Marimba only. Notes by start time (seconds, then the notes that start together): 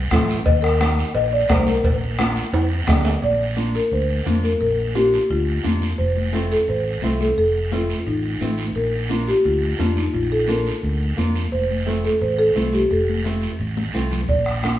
0.46 D#5
0.62 A#4
1.15 D#5
1.33 D5
1.51 C5
1.68 A#4
3.24 D5
3.75 A#4
3.93 C5
4.44 A#4
4.61 A#4
4.95 G4
5.31 F4
5.98 C5
6.52 A4
6.69 C5
7.21 A4
7.38 A4
7.73 F4
8.07 D#4
8.76 A#4
9.28 G4
9.46 F4
9.80 F4
9.97 D#4
10.14 F4
10.32 A4
10.49 A#4
11.52 C5
12.04 A4
12.22 C5
12.39 A4
12.73 G4
12.91 A4
14.29 D5